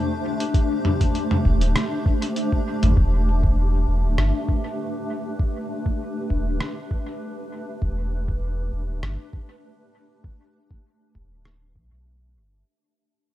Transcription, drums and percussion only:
0.40 closed hi-hat
0.54 kick, closed hi-hat
0.85 mid tom
1.01 kick, closed hi-hat
1.15 closed hi-hat
1.31 mid tom
1.45 kick
1.61 closed hi-hat
1.76 cross-stick, closed hi-hat
2.06 kick
2.22 closed hi-hat
2.36 closed hi-hat
2.52 kick
2.83 closed hi-hat, mid tom
2.97 kick
3.43 kick
4.18 cross-stick
4.49 kick
5.39 kick
5.86 kick
6.30 kick
6.60 cross-stick
6.91 kick
7.82 kick
8.28 kick
9.03 cross-stick
9.33 kick
10.24 kick
10.71 kick
11.15 kick
11.45 cross-stick
11.76 kick

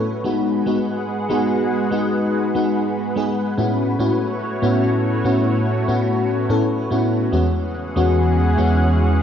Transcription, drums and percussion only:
0.25 cabasa
0.47 cabasa
1.09 cabasa
2.14 cabasa
2.34 cabasa
2.75 cabasa
2.97 cabasa
3.59 cabasa
3.80 cabasa
4.01 cabasa
4.42 cabasa
5.25 cabasa
5.46 cabasa
5.67 cabasa
6.08 cabasa
6.30 cabasa
6.91 cabasa
7.13 cabasa
7.33 cabasa
7.75 cabasa
7.96 cabasa
8.17 cabasa
8.58 cabasa
8.80 cabasa
9.00 cabasa

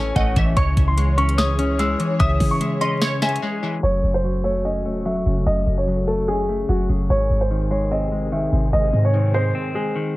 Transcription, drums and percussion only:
0.16 kick, closed hi-hat
0.36 kick, closed hi-hat
0.57 kick, closed hi-hat
0.77 kick, closed hi-hat
0.98 closed hi-hat
1.18 closed hi-hat
1.29 closed hi-hat
1.38 snare, closed hi-hat
1.59 closed hi-hat
1.79 closed hi-hat
2.00 closed hi-hat
2.20 kick, closed hi-hat
2.40 kick, open hi-hat
2.61 closed hi-hat
2.81 closed hi-hat
3.02 snare, closed hi-hat
3.22 snare, closed hi-hat
3.29 closed hi-hat
3.36 closed hi-hat
3.83 closed hi-hat
4.04 closed hi-hat
4.24 closed hi-hat
4.35 closed hi-hat
4.44 closed hi-hat
4.51 closed hi-hat
4.58 closed hi-hat
4.65 closed hi-hat
4.85 closed hi-hat
4.92 closed hi-hat
4.99 closed hi-hat
5.06 closed hi-hat
5.26 closed hi-hat
5.46 closed hi-hat
5.67 closed hi-hat
5.87 closed hi-hat
6.08 closed hi-hat
6.28 closed hi-hat
6.49 closed hi-hat
6.69 closed hi-hat
6.89 closed hi-hat
7.10 closed hi-hat
7.30 closed hi-hat
7.50 closed hi-hat
7.61 closed hi-hat
7.71 closed hi-hat
7.78 closed hi-hat
7.85 closed hi-hat
7.91 closed hi-hat
8.12 closed hi-hat
8.19 closed hi-hat
8.25 closed hi-hat
8.32 closed hi-hat
8.53 closed hi-hat
8.73 closed hi-hat
8.93 closed hi-hat
9.14 closed hi-hat
9.34 closed hi-hat

